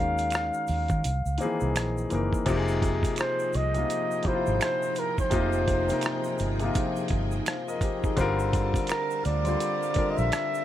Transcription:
Already playing: fingered electric bass D#2, grand piano D#3 G#3 C#4 F#4 A#4, flugelhorn F5
0.18 closed hi-hat, shaker
0.30 finger snap, closed hi-hat, shaker
0.35 cross-stick
0.54 shaker
0.67 fingered electric bass D#2, open hi-hat, shaker
0.88 fingered electric bass D#3, kick, closed hi-hat, shaker
1.04 fingered electric bass C2, closed hi-hat, shaker
1.26 fingered electric bass C#2, shaker
1.38 grand piano D#3 A#3 C4 D#4, closed hi-hat, shaker
1.42 grand piano E3 G#4
1.60 fingered electric bass C2, shaker
1.76 fingered electric bass A#1, finger snap, cross-stick, closed hi-hat, shaker
1.97 shaker
2.10 fingered electric bass F#1, grand piano E3 A#3 C4 D#4, closed hi-hat, shaker
2.14 grand piano A#4
2.33 kick, shaker
2.46 fingered electric bass F1, grand piano C3 F3 A#3 D#4, string machine F3 D#4 G#4 G5, kick, closed hi-hat, crash, shaker
2.50 grand piano G4
2.56 grand piano G#4
2.68 shaker
2.82 kick, closed hi-hat, shaker
3.03 kick, closed hi-hat, shaker
3.16 flugelhorn C5, finger snap, closed hi-hat, shaker
3.21 cross-stick
3.39 shaker
3.53 fingered electric bass C2, flugelhorn D#5, closed hi-hat, shaker
3.74 grand piano C3 F3 A#3 D#4, closed hi-hat, shaker
3.78 grand piano F4
3.90 closed hi-hat, shaker
4.11 shaker
4.23 grand piano C3 F3 A#3 D#4, muted fingered electric bass stroke, kick, closed hi-hat
4.27 grand piano E4, flugelhorn C5
4.34 grand piano F4
4.47 fingered electric bass G#1, shaker
4.61 flugelhorn C5, finger snap, cross-stick, closed hi-hat, shaker
4.82 shaker
4.95 flugelhorn A#4, closed hi-hat, shaker
5.18 flugelhorn C5, kick, shaker
5.30 fingered electric bass F1, grand piano C3 F3 A#3 D#4, kick, closed hi-hat, shaker
5.34 grand piano F4
5.53 shaker
5.68 kick, closed hi-hat, shaker
5.88 grand piano C3 F3 A#3 D#4, closed hi-hat, shaker
5.92 grand piano A#4
6.01 finger snap, closed hi-hat, shaker
6.06 cross-stick
6.24 shaker
6.38 fingered electric bass G1, closed hi-hat, shaker
6.59 grand piano C3 F3 A#3 D#4, closed hi-hat, shaker
6.64 grand piano F4
6.75 kick, closed hi-hat, shaker
6.96 shaker
7.08 fingered electric bass G1, kick, closed hi-hat
7.31 shaker
7.46 grand piano C5 F5, finger snap, cross-stick, closed hi-hat, shaker
7.68 grand piano A#4 D#5, shaker
7.81 grand piano G4 C5, kick, closed hi-hat, shaker
8.04 grand piano D#4 G#4, kick, shaker
8.16 fingered electric bass G1, grand piano D3 G3 C4 F4, string machine G3 F4 A#4 A5, kick, closed hi-hat, shaker
8.21 grand piano A#4
8.39 shaker
8.53 kick, closed hi-hat, shaker
8.74 kick, closed hi-hat, shaker
8.87 flugelhorn A#4, finger snap, closed hi-hat, shaker
8.92 cross-stick
9.10 shaker
9.25 fingered electric bass D2, flugelhorn D5, closed hi-hat, shaker
9.44 grand piano D3 G3 C4 F4, closed hi-hat, shaker
9.48 grand piano C5
9.60 closed hi-hat, shaker
9.83 shaker
9.94 grand piano D3 G3 C4 F4, muted fingered electric bass stroke, kick, closed hi-hat
9.98 grand piano A#4
10.10 flugelhorn D#5
10.17 fingered electric bass A#1, flugelhorn E5, shaker
10.32 finger snap, cross-stick, closed hi-hat, shaker
10.54 shaker

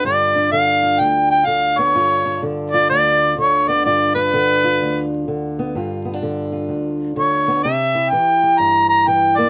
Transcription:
Already playing: steel-string acoustic guitar D3
0.05 steel-string acoustic guitar G2 F4, harmonica D5
0.36 steel-string acoustic guitar D4
0.52 steel-string acoustic guitar D3, harmonica F5
0.83 steel-string acoustic guitar F4
1.00 steel-string acoustic guitar D2, harmonica G5
1.31 harmonica G5
1.46 steel-string acoustic guitar D3, harmonica F5
1.79 steel-string acoustic guitar B3, harmonica C#5
1.95 steel-string acoustic guitar G2 F4
2.25 steel-string acoustic guitar D4
2.42 steel-string acoustic guitar D3
2.71 steel-string acoustic guitar F4, harmonica D5
2.90 steel-string acoustic guitar D2, harmonica D5
3.38 steel-string acoustic guitar D3, harmonica C#5
3.68 steel-string acoustic guitar B3, harmonica D5
3.85 steel-string acoustic guitar G2 F4, harmonica D5
4.15 steel-string acoustic guitar D4, harmonica B4
4.33 steel-string acoustic guitar D3
4.64 steel-string acoustic guitar F4
4.82 steel-string acoustic guitar D2
5.28 steel-string acoustic guitar D3
5.59 steel-string acoustic guitar B3
5.75 steel-string acoustic guitar G2 F4
6.05 steel-string acoustic guitar B3
6.13 steel-string acoustic guitar D4
6.23 steel-string acoustic guitar D3
6.52 steel-string acoustic guitar F4
6.69 steel-string acoustic guitar D2
7.16 steel-string acoustic guitar D3, harmonica C#5
7.48 steel-string acoustic guitar B3
7.64 steel-string acoustic guitar C3 G4, harmonica E5
7.95 steel-string acoustic guitar E4
8.10 steel-string acoustic guitar E3, harmonica G5
8.43 steel-string acoustic guitar G4
8.59 steel-string acoustic guitar G2, harmonica A#5
8.89 harmonica A#5
9.08 steel-string acoustic guitar E3, harmonica G5
9.37 steel-string acoustic guitar A#3, harmonica D5

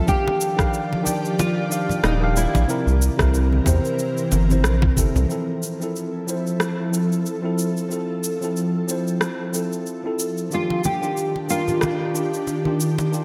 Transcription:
0.05 tine electric piano D#3 D4 G4 F5, ambient pad F3 G4 D5, nylon-string guitar G4, kick, cabasa
0.28 muted conga
0.41 cabasa
0.56 tine electric piano D#3 D4 G4 F5, kick, cross-stick, cabasa
0.74 cabasa
0.93 muted conga, high conga
1.03 tine electric piano D#3 D4 G4 G5, high conga, cabasa
1.25 cabasa
1.39 nylon-string guitar F4, muted conga, cabasa
1.69 tine electric piano D#3 D4 G4 F5, cabasa
1.89 low conga, cabasa
2.04 analog synth bass D#1, nylon-string guitar D#4, cross-stick, muted conga, cabasa
2.20 tine electric piano D#3 D4 G4 F5
2.36 nylon-string guitar E4, cabasa
2.55 analog synth bass A#1, muted conga, low conga, cabasa
2.67 tine electric piano C3 C4 E4 A#4, ambient pad E3 C4 A#4, cabasa
2.87 analog synth bass C2, cabasa
3.02 cabasa
3.17 analog synth bass C2, tine electric piano C3 C4 E4 A#4, kick, cross-stick, muted conga, cabasa
3.34 cabasa
3.52 high conga
3.65 analog synth bass E2, tine electric piano C3 C4 E4 C5, kick, muted conga, high conga, cabasa
3.85 cabasa
3.99 cabasa
4.17 cabasa
4.32 analog synth bass G1, muted conga, high conga, cabasa
4.49 tine electric piano C3 C4 E4 C5, low conga, cabasa
4.64 analog synth bass A#1, cross-stick, cabasa
4.82 kick, muted conga
4.96 analog synth bass G1, tine electric piano C3 C4 E4 A4, kick, cabasa
5.15 analog synth bass C2, low conga, cabasa
5.28 tine electric piano F3 C4 E4 A4, ambient pad F3 E4 A4, cabasa
5.63 cabasa
5.80 tine electric piano F3 C4 E4 A4, cabasa
5.96 cabasa
6.27 tine electric piano F3 C4 E4 C5, cabasa
6.47 cabasa
6.60 cross-stick, cabasa
6.91 tine electric piano F3 C4 E4 A4, cabasa
7.12 cabasa
7.26 cabasa
7.42 tine electric piano F3 C4 E4 A4
7.58 cabasa
7.77 cabasa
7.89 tine electric piano F3 C4 E4 A4, cabasa
8.24 cabasa
8.41 tine electric piano F3 C4 E4 A4, cabasa
8.56 cabasa
8.88 tine electric piano F3 C4 E4 C5, cabasa
9.08 cabasa
9.21 cross-stick, cabasa
9.52 tine electric piano F3 C4 E4 A4, cabasa
9.73 cabasa
9.86 cabasa
10.04 tine electric piano F3 C4 E4 A4
10.19 cabasa
10.38 cabasa
10.50 tine electric piano D#3 D4 F4 G4, ambient pad D#3 D4 G4, nylon-string guitar F4, cabasa
10.70 muted conga
10.84 nylon-string guitar G4, high conga, cabasa
11.01 tine electric piano D#3 D4 F4 G4, cabasa
11.17 cabasa
11.36 muted conga
11.48 tine electric piano D#3 D4 F4 A#4, nylon-string guitar F4, cabasa
11.68 low conga, cabasa
11.81 cross-stick, muted conga, high conga, cabasa
12.13 tine electric piano D#3 D4 F4 G4, cabasa
12.34 cabasa
12.47 muted conga, cabasa
12.65 tine electric piano D#3 D4 F4 G4, high conga
12.80 cabasa
12.98 muted conga, cabasa
13.11 tine electric piano D#3 D4 F4 G4, cabasa

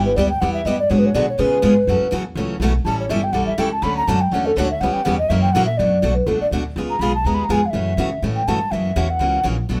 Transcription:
Already playing: upright bass G1, steel-string acoustic guitar G3 B3 E4 G4
0.05 ocarina B4
0.16 upright bass D2, steel-string acoustic guitar G3 B3 E4 G4, ocarina D5
0.29 ocarina G5
0.41 upright bass E2, steel-string acoustic guitar G3 B3 E4 G4, ocarina F#5
0.54 ocarina E5
0.65 upright bass G2, steel-string acoustic guitar G3 B3 E4 G4, ocarina D#5
0.79 ocarina D5
0.90 upright bass G#2, steel-string acoustic guitar D3 F#3 B3 F#4 G#4, ocarina C#5
0.99 ocarina B4
1.06 ocarina C#5
1.14 upright bass B2, steel-string acoustic guitar D3 F#3 B3 F#4 G#4, ocarina D5
1.29 ocarina C#5
1.38 steel-string acoustic guitar C#3 G#3 B3 F4 G#4, upright bass C#3, ocarina B4
1.62 upright bass G#2, steel-string acoustic guitar C#3 G#3 B3 F4 G#4
1.87 upright bass F#2, steel-string acoustic guitar C#3 E3 F#3 A3 C#4 E4 F#4 A4
2.01 muted upright bass stroke
2.11 upright bass E2, steel-string acoustic guitar C#3 E3 F#3 A3 C#4 E4 F#4 A4
2.35 upright bass C#2, steel-string acoustic guitar C#3 E3 F#3 A3 C#4 E4 F#4 A4
2.60 upright bass B1, steel-string acoustic guitar C#3 E3 F#3 A3 C#4 E4 F#4 A4
2.85 upright bass A1, steel-string acoustic guitar E3 G3 C#4 E4 A4, ocarina A5
3.00 ocarina C#5
3.09 upright bass G1, steel-string acoustic guitar E3 G3 C#4 E4 A4, ocarina E5
3.24 ocarina G5
3.33 upright bass B1, steel-string acoustic guitar E3 G3 C#4 E4 A4, ocarina F#5
3.46 ocarina E5, muted upright bass stroke
3.58 upright bass C#2, steel-string acoustic guitar E3 G3 C#4 E4 A4, ocarina G5
3.72 ocarina A5
3.82 upright bass D2, steel-string acoustic guitar D3 F#3 A3 C#4 F#4 A4, ocarina B5
3.97 ocarina A#5
4.07 upright bass F#2, steel-string acoustic guitar D3 F#3 A3 C#4 F#4 A4, ocarina A5
4.21 ocarina G5
4.32 upright bass E2, steel-string acoustic guitar D3 F#3 A3 C#4 F#4 A4, ocarina F#5
4.46 ocarina A4
4.57 upright bass D2, steel-string acoustic guitar D3 F#3 A3 C#4 F#4 A4, ocarina C#5
4.71 ocarina E5
4.81 upright bass C#2, steel-string acoustic guitar C#3 E3 G3 B3 C#4 E4 G4 B4, ocarina F#5
4.93 ocarina G5, muted upright bass stroke
5.04 upright bass E2, steel-string acoustic guitar C#3 E3 G3 B3 C#4 E4 G4 B4, ocarina F#5
5.18 ocarina D#5
5.29 upright bass F#2, steel-string acoustic guitar C#3 E3 F#3 A#3 C#4 E4 F#4 A#4, ocarina E5
5.42 ocarina G5
5.53 upright bass A#2, steel-string acoustic guitar C#3 E3 F#3 A#3 C#4 E4 F#4 A#4, ocarina F#5
5.66 ocarina E5
5.78 upright bass F#2, steel-string acoustic guitar B2 F#3 A3 D4 F#4, ocarina D5
6.02 upright bass B1, steel-string acoustic guitar B2 F#3 A3 D4 F#4
6.15 ocarina B4
6.26 upright bass C#2, steel-string acoustic guitar B2 F#3 A3 D4 F#4, ocarina A4
6.40 ocarina D5, muted upright bass stroke
6.51 upright bass D2, steel-string acoustic guitar B2 F#3 A3 D4 F#4
6.76 upright bass C#2, steel-string acoustic guitar C#3 G#3 B3 F4 G#4
6.90 ocarina A#5
6.99 upright bass B1, steel-string acoustic guitar C#3 G#3 B3 F4 G#4, ocarina B5
7.15 ocarina A5
7.24 upright bass D#2, steel-string acoustic guitar C#3 G#3 B3 F4 G#4, ocarina A#5
7.34 ocarina B5
7.44 ocarina A#5
7.49 upright bass F2, steel-string acoustic guitar C#3 G#3 B3 F4 G#4, ocarina G#5
7.66 ocarina F5
7.70 upright bass F#2, steel-string acoustic guitar C#3 E3 A3, ocarina E5
7.75 steel-string acoustic guitar C#4 F#4
7.97 upright bass C#3, steel-string acoustic guitar C#3 E3 A3 C#4 F#4
8.22 upright bass A2, steel-string acoustic guitar C#3 E3 A3 C#4 F#4
8.36 ocarina G5
8.48 upright bass G2, steel-string acoustic guitar C#3 E3 A3 C#4 F#4, ocarina A5
8.71 upright bass F#2, steel-string acoustic guitar C#3 E3 A#3 C#4 F#4, ocarina E5
8.96 upright bass E2, steel-string acoustic guitar C#3 E3 A#3 C#4 F#4
9.10 ocarina F#5
9.19 upright bass C#2, steel-string acoustic guitar C#3 E3 A#3 C#4 F#4
9.43 upright bass A#1, steel-string acoustic guitar C#3 E3 A#3 C#4 F#4
9.69 upright bass B1, steel-string acoustic guitar B2 F#3 A3 D4 F#4 B4

